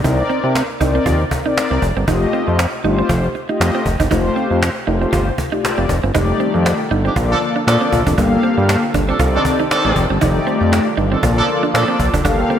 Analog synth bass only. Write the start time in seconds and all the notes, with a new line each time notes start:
0.04 C2
0.44 C3
0.81 C2
1.06 D#2
1.71 C2
1.82 F1
1.97 G1
2.08 F1
2.48 F2
2.84 G1
3.09 F1
3.60 F2
3.86 F1
4.00 G1
4.11 F1
4.51 F2
4.87 F1
5.13 G1
5.78 F1
5.89 F1
6.04 G1
6.15 F1
6.54 F2
6.91 G1
7.16 A#1
7.67 A#2
7.92 A#1
8.07 F1
8.18 G1
8.58 G2
8.94 G1
9.19 C2
9.85 A1
9.96 F1
10.10 G1
10.21 F1
10.61 F2
10.98 G1
11.23 A#1
11.74 A#2
12.00 A#1
12.14 F1
12.25 G1